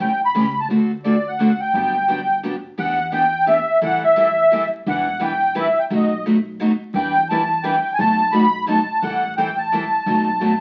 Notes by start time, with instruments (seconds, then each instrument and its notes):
0.00 upright bass B1, steel-string acoustic guitar E3 A3 C#4 G4, accordion G5
0.25 accordion B5
0.34 upright bass C#2, steel-string acoustic guitar E3 A3 C#4 G4
0.60 accordion A5
0.69 upright bass D2, steel-string acoustic guitar D3 A3 C4 F#4 A4
1.04 steel-string acoustic guitar D3 A3 C4 F#4 A4, accordion D5
1.28 accordion F#5
1.39 steel-string acoustic guitar D3 A3 C4 F#4 A4
1.60 accordion G5
1.73 upright bass G1, steel-string acoustic guitar D3 F#3 B3 D4 G4
2.08 steel-string acoustic guitar D3 F#3 B3 D4 G4
2.43 steel-string acoustic guitar D3 F#3 B3 D4 G4
2.78 upright bass E2, steel-string acoustic guitar E3 B3 D4 G4, accordion F#5
3.12 steel-string acoustic guitar E3 B3 D4 G4, accordion G5
3.46 steel-string acoustic guitar E3 B3 D4 G4, accordion E5
3.81 upright bass A1, steel-string acoustic guitar E3 G3 C4 E4 A4, accordion F#5
4.04 accordion E5
4.16 steel-string acoustic guitar E3 G3 C4 E4 A4
4.52 steel-string acoustic guitar E3 G3 C4 E4 A4
4.86 upright bass E1, steel-string acoustic guitar E3 G3 D4 E4 B4, accordion F#5
5.20 steel-string acoustic guitar E3 G3 D4 E4 B4, accordion G5
5.55 steel-string acoustic guitar E3 G3 D4 E4 B4
5.59 accordion E5
5.79 accordion G5
5.90 upright bass B1, steel-string acoustic guitar B2 F#3 A3 D#4 F#4
5.96 accordion D#5
6.26 steel-string acoustic guitar B2 F#3 A3 D#4 F#4
6.60 steel-string acoustic guitar B2 F#3 A3 D#4 F#4
6.94 upright bass E2, steel-string acoustic guitar E3 G3 D4 E4 B4, accordion G5
7.29 steel-string acoustic guitar E3 G3 D4 E4 B4, accordion A5
7.63 steel-string acoustic guitar E3 G3 D4 E4 B4, accordion G5
7.93 accordion G#5
7.99 upright bass B1, steel-string acoustic guitar B2 F#3 A3 D#4 F#4, accordion A5
8.32 steel-string acoustic guitar B2 F#3 A3 D#4 F#4, accordion B5
8.66 steel-string acoustic guitar B2 F#3 A3 D#4 F#4, accordion A5
9.02 upright bass A1, steel-string acoustic guitar E3 G3 C4 E4 A4, accordion F#5
9.37 steel-string acoustic guitar E3 G3 C4 E4 A4, accordion G5
9.57 accordion A5
9.72 steel-string acoustic guitar E3 G3 C4 E4 A4
10.06 upright bass B1, steel-string acoustic guitar B2 F#3 A3 D#4 F#4
10.40 steel-string acoustic guitar B2 F#3 A3 D#4 F#4